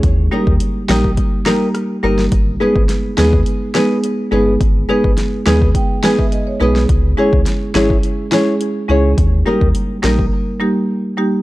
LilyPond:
<<
  \new Staff \with { instrumentName = "Nylon-string guitar" } { \time 4/4 \key gis \minor \tempo 4 = 105 r8 <g' ais' dis''>8 r8 <g' ais' dis''>8 r8 <g' ais' dis''>8 r8 <g' ais' dis''>8 | r8 <gis' b' dis''>8 r8 <gis' b' dis''>8 r8 <gis' b' dis''>8 r8 <gis' b' dis''>8 | r8 <gis' b' dis''>8 r8 <gis' b' dis''>8 r8 <gis' b' dis''>8 r8 <gis' b' dis''>8 | r8 <e' gis' cis''>8 r8 <e' gis' cis''>8 r8 <e' gis' cis''>8 r8 <e' gis' cis''>8 |
r8 <g' ais' dis''>8 r8 <g' ais' dis''>8 r2 | }
  \new Staff \with { instrumentName = "Marimba" } { \time 4/4 \key gis \minor << { r1 | r1 | r4. gis''8 g''8 gis''16 e''16 dis''16 cis''16 b'8 | r1 |
r1 | } \\ { r8 <g ais dis' g'>8 r8 <g ais dis' g'>8 r8 <g ais dis' g'>8 r8 <g ais dis' g'>8 | r8 <gis b dis' gis'>8 r8 <gis b dis' gis'>8 r8 <gis b dis' gis'>8 r8 <gis b dis' gis'>8 | r8 <gis b dis' gis'>8 r8 <gis b dis' gis'>8 r8 <gis b dis' gis'>8 r8 <gis b dis' gis'>8 | r8 <gis cis' e' gis'>8 r8 <gis cis' e' gis'>8 r8 <gis cis' e' gis'>8 r8 <gis cis' e' gis'>8 |
r8 <g ais dis' g'>8 r8 <g ais dis' ais'>8 r8 <g ais dis' g'>8 r8 <g ais dis' g'>8 | } >> }
  \new Staff \with { instrumentName = "Sub bass" } { \clef bass \time 4/4 \key gis \minor dis,8 r16 dis,16 r8 ais,,8 r4. g,,8 | gis,,8 r16 gis,,16 r8 dis,8 r4. g,,8 | gis,,8 r16 gis,,16 r8 dis,8 r4. b,,8 | cis,8 r16 cis,16 r8 gis,,8 r4. cis,8 |
dis,8 r16 dis,16 r8 ais,,8 r2 | }
  \new DrumStaff \with { instrumentName = "Drums" } \drummode { \time 4/4 <hh bd>8. bd16 hh8 sn16 bd16 <hh bd>8 sn8 <hh ss>8. sn16 | <hh bd>8. bd16 <hh sn>8 sn16 bd16 hh8 sn8 hh4 | <hh bd>8. bd16 <hh sn>8 sn16 bd16 <hh bd>8 sn16 bd16 hh8. sn16 | <hh bd>8. bd16 <hh sn>8 sn16 bd16 hh8 sn8 hh4 |
<hh bd>8. bd16 hh8 sn16 bd16 r4 r4 | }
>>